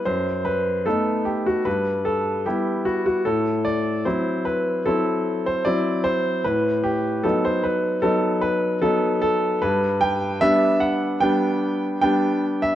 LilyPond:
<<
  \new Staff \with { instrumentName = "Grand piano" } { \time 4/4 \key b \phrygian \tempo 4 = 75 c''8 b'8 a'8 g'16 fis'16 b'8 a'8 g'8 fis'16 fis'16 | a'8 d''8 c''8 b'8 a'8. c''16 d''8 c''8 | b'8 g'8 a'16 c''16 b'8 a'8 b'8 a'8 a'8 | \key g \major b'8 g''8 e''8 fis''8 g''4 g''8. e''16 | }
  \new Staff \with { instrumentName = "Grand piano" } { \time 4/4 \key b \phrygian fis,4 <a b dis'>4 g,4 <g b e'>4 | a,4 <fis c' e'>4 <fis c' e'>4 <fis c' e'>4 | a,4 <fis b dis'>4 <fis b dis'>4 <fis b dis'>4 | \key g \major g,4 <g b d'>4 <g b d'>4 <g b d'>4 | }
>>